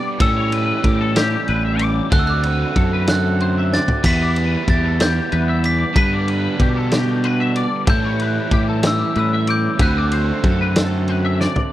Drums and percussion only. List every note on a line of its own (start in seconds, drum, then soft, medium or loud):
0.20 kick loud
0.20 ride loud
0.52 ride medium
0.84 kick medium
0.84 ride medium
1.16 snare loud
1.16 ride loud
1.48 ride medium
1.79 ride medium
2.12 kick loud
2.12 ride loud
2.43 ride medium
2.76 kick medium
2.76 ride medium
3.07 snare loud
3.07 ride loud
3.40 ride medium
3.73 snare medium
3.88 floor tom loud
4.04 kick loud
4.04 splash medium
4.04 crash loud
4.36 ride medium
4.68 kick medium
4.68 ride medium
5.00 snare loud
5.00 ride loud
5.32 ride medium
5.64 ride medium
5.96 kick loud
5.96 ride loud
6.28 ride medium
6.60 kick medium
6.60 ride medium
6.91 snare loud
6.91 ride loud
7.24 ride medium
7.55 ride medium
7.87 kick loud
7.87 ride loud
8.19 ride medium
8.51 kick medium
8.51 ride medium
8.83 snare loud
8.83 ride loud
9.15 ride medium
9.47 ride medium
9.79 kick loud
9.79 ride loud
10.11 ride medium
10.44 kick medium
10.44 ride medium
10.76 snare loud
10.76 ride loud
11.08 ride medium
11.41 snare medium
11.56 floor tom loud